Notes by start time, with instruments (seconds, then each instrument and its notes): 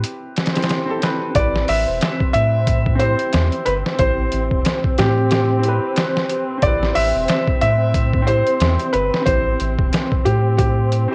Already playing: upright piano C4 E4 G4 B4, felt piano G4
0.04 closed hi-hat
0.36 snare, closed hi-hat
0.46 snare, closed hi-hat
0.53 upright piano C4 E4 G4, snare, closed hi-hat
0.58 upright piano C5
0.62 snare, closed hi-hat
0.69 snare, closed hi-hat
0.86 upright piano C4 E4 G4
0.91 upright piano A4
0.99 upright piano C4 E4 G4, closed hi-hat
1.03 upright piano B4, snare
1.30 upright piano C4 E4
1.35 analog synth bass A1, string section C4, upright piano G4, felt piano D5, kick, closed hi-hat
1.39 upright piano B4
1.56 snare
1.68 analog synth bass A1, felt piano E5, open hi-hat
2.01 snare, closed hi-hat
2.20 kick
2.33 analog synth bass A2, felt piano E5, closed hi-hat
2.67 kick, closed hi-hat
2.86 kick
2.95 upright piano C4 E4, felt piano C5
3.00 upright piano G4, closed hi-hat
3.05 upright piano C5
3.19 closed hi-hat
3.33 analog synth bass E2, snare, closed hi-hat
3.52 closed hi-hat
3.66 analog synth bass G1, felt piano B4, closed hi-hat
3.86 snare
3.94 upright piano C4 E4
3.99 analog synth bass A1, upright piano G4, felt piano C5, kick, closed hi-hat
4.03 upright piano C5
4.32 analog synth bass A1, closed hi-hat
4.51 analog synth bass E1, kick
4.65 snare, closed hi-hat
4.84 kick
4.98 analog synth bass A2, felt piano G4, snare, closed hi-hat
5.31 felt piano G4, snare, closed hi-hat
5.59 upright piano C4 E4
5.63 upright piano G4, closed hi-hat
5.68 upright piano B4
5.96 snare, closed hi-hat
6.17 snare
6.29 closed hi-hat
6.58 upright piano C4 E4
6.62 analog synth bass A1, upright piano G4, felt piano D5, kick, closed hi-hat
6.67 upright piano B4
6.83 snare
6.95 analog synth bass A1, felt piano E5, open hi-hat
7.15 analog synth bass E1
7.28 snare, closed hi-hat
7.48 kick
7.62 analog synth bass A2, felt piano E5, closed hi-hat
7.94 kick, closed hi-hat
8.14 kick
8.22 upright piano C4 E4
8.27 upright piano G4, felt piano C5, closed hi-hat
8.31 upright piano C5
8.47 closed hi-hat
8.60 analog synth bass E2, snare, closed hi-hat
8.80 closed hi-hat
8.93 analog synth bass G1, felt piano B4, closed hi-hat
9.14 snare
9.21 upright piano C4 E4
9.26 analog synth bass A1, upright piano G4, felt piano C5, kick, closed hi-hat
9.31 upright piano C5
9.60 analog synth bass A1, closed hi-hat
9.79 kick
9.93 snare, closed hi-hat
10.12 kick
10.25 analog synth bass A2, felt piano G4, closed hi-hat
10.58 felt piano G4, kick, closed hi-hat
10.92 closed hi-hat
11.08 upright piano C4 E4 G4